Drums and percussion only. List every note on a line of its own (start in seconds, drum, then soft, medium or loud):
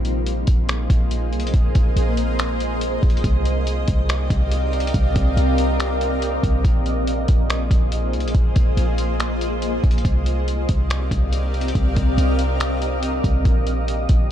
0.05 closed hi-hat medium
0.27 closed hi-hat medium
0.47 kick medium
0.47 closed hi-hat medium
0.69 finger snap loud
0.69 closed hi-hat medium
0.90 kick medium
0.90 closed hi-hat medium
1.11 closed hi-hat medium
1.33 closed hi-hat soft
1.40 closed hi-hat soft
1.47 closed hi-hat medium
1.54 kick loud
1.54 closed hi-hat medium
1.75 kick medium
1.75 closed hi-hat medium
1.97 closed hi-hat medium
2.17 closed hi-hat medium
2.39 finger snap loud
2.39 closed hi-hat medium
2.60 closed hi-hat medium
2.81 closed hi-hat medium
3.03 kick medium
3.03 closed hi-hat soft
3.10 closed hi-hat medium
3.17 closed hi-hat medium
3.24 kick loud
3.24 closed hi-hat medium
3.45 closed hi-hat medium
3.67 closed hi-hat medium
3.88 kick medium
3.88 closed hi-hat medium
4.09 finger snap loud
4.09 closed hi-hat medium
4.30 kick medium
4.30 closed hi-hat medium
4.52 closed hi-hat medium
4.73 closed hi-hat soft
4.80 closed hi-hat medium
4.87 closed hi-hat medium
4.94 kick loud
4.94 closed hi-hat medium
5.16 kick medium
5.16 closed hi-hat medium
5.37 closed hi-hat medium
5.58 closed hi-hat medium
5.80 finger snap loud
5.80 closed hi-hat medium
6.01 closed hi-hat medium
6.22 closed hi-hat medium
6.43 kick medium
6.43 closed hi-hat medium
6.65 kick loud
6.65 closed hi-hat medium
6.86 closed hi-hat medium
7.07 closed hi-hat medium
7.28 kick medium
7.28 closed hi-hat medium
7.50 finger snap loud
7.50 closed hi-hat medium
7.71 kick medium
7.71 closed hi-hat medium
7.92 closed hi-hat medium
8.13 closed hi-hat soft
8.20 closed hi-hat medium
8.28 closed hi-hat medium
8.35 kick loud
8.35 closed hi-hat medium
8.56 kick medium
8.56 closed hi-hat medium
8.77 closed hi-hat medium
8.98 closed hi-hat medium
9.20 finger snap loud
9.20 closed hi-hat medium
9.41 closed hi-hat medium
9.62 closed hi-hat medium
9.84 kick medium
9.84 closed hi-hat soft
9.91 closed hi-hat medium
9.98 closed hi-hat medium
10.05 kick loud
10.05 closed hi-hat medium
10.26 closed hi-hat medium
10.48 closed hi-hat medium
10.69 kick medium
10.69 closed hi-hat medium
10.90 finger snap loud
10.90 closed hi-hat medium
11.11 kick medium
11.11 closed hi-hat medium
11.33 closed hi-hat medium
11.54 closed hi-hat soft
11.61 closed hi-hat soft
11.68 closed hi-hat medium
11.75 kick loud
11.75 closed hi-hat medium
11.96 kick medium
11.96 closed hi-hat medium
12.18 closed hi-hat medium
12.39 closed hi-hat medium
12.60 finger snap loud
12.60 closed hi-hat medium
12.82 closed hi-hat medium
13.03 closed hi-hat medium
13.24 kick medium
13.24 closed hi-hat medium
13.45 kick loud
13.45 closed hi-hat medium
13.67 closed hi-hat medium
13.88 closed hi-hat medium
14.09 kick medium
14.09 closed hi-hat medium